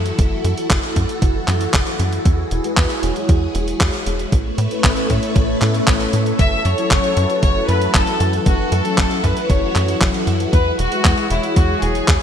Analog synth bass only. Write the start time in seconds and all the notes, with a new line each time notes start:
Already playing: F#2
0.19 F#1
0.45 F#2
0.70 F#1
0.96 F#2
1.22 F#1
1.48 F#2
1.74 F#1
2.00 F#2
2.26 E2
2.51 E1
2.77 E2
3.03 E1
3.29 E2
3.55 E1
3.81 E2
4.06 E1
4.32 A1
4.58 A2
4.84 A1
5.10 A2
5.36 A1
5.62 A2
5.88 A1
6.13 A2
6.39 F#1
6.65 F#2
6.91 F#1
7.17 F#2
7.43 F#1
7.69 F#2
7.95 F#1
8.20 F#2
8.46 F#1
8.72 F#2
8.98 F#1
9.24 F#2
9.50 F#1
9.76 F#2
10.01 F#1
10.27 F#2
10.53 E2
10.79 E1
11.05 E2
11.30 E1
11.57 E2
11.82 E1
12.08 E2